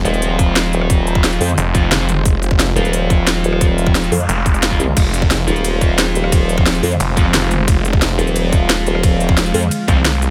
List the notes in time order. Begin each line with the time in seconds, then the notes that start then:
Already playing: G#3 F4 C5
0.05 D#1 F3 C4 F4, closed hi-hat
0.14 closed hi-hat
0.22 closed hi-hat
0.39 kick, closed hi-hat
0.56 snare, closed hi-hat
0.73 closed hi-hat
0.81 cross-stick
0.90 kick, closed hi-hat
1.07 closed hi-hat
1.15 kick, cross-stick
1.24 snare, closed hi-hat
1.32 closed hi-hat
1.40 F2 F3 C4 F4, open hi-hat
1.49 closed hi-hat
1.58 F1, closed hi-hat
1.74 F3 C4 F4, kick, closed hi-hat
1.83 cross-stick
1.92 F1, snare, closed hi-hat
2.00 F3 C4 F4
2.09 closed hi-hat
2.25 F1 F5, kick, closed hi-hat
2.42 closed hi-hat
2.51 kick, cross-stick
2.59 snare, closed hi-hat
2.76 D#1 F3 C4 F4, closed hi-hat
2.85 closed hi-hat
2.93 closed hi-hat
3.10 kick, closed hi-hat
3.27 snare, closed hi-hat
3.44 closed hi-hat
3.53 cross-stick
3.61 kick, closed hi-hat, noise sweep
3.78 closed hi-hat
3.86 kick, cross-stick
3.95 snare, closed hi-hat
4.04 closed hi-hat
4.12 F2, open hi-hat
4.29 F1, closed hi-hat
4.46 kick, closed hi-hat
4.54 cross-stick, closed hi-hat
4.63 snare, closed hi-hat
4.71 F3 C4 F4, kick
4.80 C2, closed hi-hat
4.97 F1 C5, kick, closed hi-hat, ride, crash
5.14 closed hi-hat
5.22 kick, cross-stick
5.31 snare, closed hi-hat, ride
5.47 D#1 F3 C4 F4, closed hi-hat
5.56 closed hi-hat
5.64 closed hi-hat, ride
5.81 kick, closed hi-hat
5.98 snare, closed hi-hat, ride
6.15 closed hi-hat
6.24 cross-stick
6.32 kick, closed hi-hat, ride
6.49 closed hi-hat
6.58 kick, cross-stick
6.66 snare, closed hi-hat, ride
6.75 closed hi-hat
6.83 F2 F3 C4 F4, open hi-hat
6.92 closed hi-hat
7.00 F1, closed hi-hat, ride
7.17 F3 C4 F4, kick, closed hi-hat
7.26 cross-stick
7.34 F1, snare, closed hi-hat, ride
7.42 F3 C4 F4
7.51 closed hi-hat
7.68 F1 F5, kick, closed hi-hat, ride
7.85 closed hi-hat
7.93 kick, cross-stick
8.02 snare, closed hi-hat, ride
8.18 D#1 F3 C4 F4, closed hi-hat
8.27 closed hi-hat
8.36 closed hi-hat, ride
8.53 kick, closed hi-hat
8.70 snare, closed hi-hat, ride
8.87 closed hi-hat
8.95 cross-stick
9.03 kick, closed hi-hat, ride
9.20 closed hi-hat
9.29 kick, cross-stick
9.37 snare, closed hi-hat, ride
9.46 closed hi-hat
9.54 F2 F3 C4 F4, open hi-hat
9.63 closed hi-hat
9.71 closed hi-hat, ride
9.88 C2 F3 C4 F4, kick, closed hi-hat
9.97 cross-stick
10.05 snare, closed hi-hat, ride
10.22 closed hi-hat